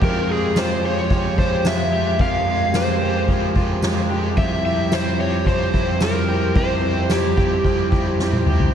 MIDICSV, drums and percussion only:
0, 0, Header, 1, 2, 480
1, 0, Start_track
1, 0, Key_signature, -4, "minor"
1, 0, Tempo, 545455
1, 11, Time_signature, 4, 2, 24, 8
1, 7691, End_track
2, 0, Start_track
2, 0, Title_t, "Drums"
2, 12, Note_on_c, 9, 49, 110
2, 14, Note_on_c, 9, 36, 116
2, 100, Note_off_c, 9, 49, 0
2, 102, Note_off_c, 9, 36, 0
2, 490, Note_on_c, 9, 38, 119
2, 492, Note_on_c, 9, 54, 70
2, 578, Note_off_c, 9, 38, 0
2, 580, Note_off_c, 9, 54, 0
2, 971, Note_on_c, 9, 36, 100
2, 975, Note_on_c, 9, 51, 59
2, 1059, Note_off_c, 9, 36, 0
2, 1063, Note_off_c, 9, 51, 0
2, 1214, Note_on_c, 9, 36, 101
2, 1302, Note_off_c, 9, 36, 0
2, 1451, Note_on_c, 9, 54, 65
2, 1453, Note_on_c, 9, 38, 113
2, 1539, Note_off_c, 9, 54, 0
2, 1541, Note_off_c, 9, 38, 0
2, 1929, Note_on_c, 9, 51, 60
2, 1931, Note_on_c, 9, 36, 121
2, 2017, Note_off_c, 9, 51, 0
2, 2019, Note_off_c, 9, 36, 0
2, 2408, Note_on_c, 9, 38, 127
2, 2411, Note_on_c, 9, 54, 70
2, 2496, Note_off_c, 9, 38, 0
2, 2499, Note_off_c, 9, 54, 0
2, 2888, Note_on_c, 9, 36, 88
2, 2892, Note_on_c, 9, 51, 65
2, 2976, Note_off_c, 9, 36, 0
2, 2980, Note_off_c, 9, 51, 0
2, 3130, Note_on_c, 9, 36, 100
2, 3218, Note_off_c, 9, 36, 0
2, 3363, Note_on_c, 9, 51, 59
2, 3365, Note_on_c, 9, 54, 67
2, 3367, Note_on_c, 9, 38, 114
2, 3451, Note_off_c, 9, 51, 0
2, 3453, Note_off_c, 9, 54, 0
2, 3455, Note_off_c, 9, 38, 0
2, 3847, Note_on_c, 9, 36, 118
2, 3847, Note_on_c, 9, 51, 60
2, 3935, Note_off_c, 9, 36, 0
2, 3935, Note_off_c, 9, 51, 0
2, 4325, Note_on_c, 9, 38, 127
2, 4328, Note_on_c, 9, 54, 74
2, 4413, Note_off_c, 9, 38, 0
2, 4416, Note_off_c, 9, 54, 0
2, 4806, Note_on_c, 9, 36, 95
2, 4809, Note_on_c, 9, 51, 62
2, 4894, Note_off_c, 9, 36, 0
2, 4897, Note_off_c, 9, 51, 0
2, 5050, Note_on_c, 9, 36, 97
2, 5138, Note_off_c, 9, 36, 0
2, 5282, Note_on_c, 9, 51, 58
2, 5284, Note_on_c, 9, 54, 62
2, 5286, Note_on_c, 9, 38, 117
2, 5370, Note_off_c, 9, 51, 0
2, 5372, Note_off_c, 9, 54, 0
2, 5374, Note_off_c, 9, 38, 0
2, 5768, Note_on_c, 9, 36, 126
2, 5768, Note_on_c, 9, 51, 63
2, 5856, Note_off_c, 9, 36, 0
2, 5856, Note_off_c, 9, 51, 0
2, 6243, Note_on_c, 9, 38, 126
2, 6245, Note_on_c, 9, 54, 72
2, 6331, Note_off_c, 9, 38, 0
2, 6333, Note_off_c, 9, 54, 0
2, 6489, Note_on_c, 9, 36, 103
2, 6577, Note_off_c, 9, 36, 0
2, 6727, Note_on_c, 9, 36, 84
2, 6730, Note_on_c, 9, 51, 59
2, 6815, Note_off_c, 9, 36, 0
2, 6818, Note_off_c, 9, 51, 0
2, 6970, Note_on_c, 9, 36, 96
2, 7058, Note_off_c, 9, 36, 0
2, 7209, Note_on_c, 9, 38, 60
2, 7297, Note_off_c, 9, 38, 0
2, 7325, Note_on_c, 9, 48, 62
2, 7413, Note_off_c, 9, 48, 0
2, 7444, Note_on_c, 9, 45, 90
2, 7532, Note_off_c, 9, 45, 0
2, 7563, Note_on_c, 9, 43, 97
2, 7651, Note_off_c, 9, 43, 0
2, 7691, End_track
0, 0, End_of_file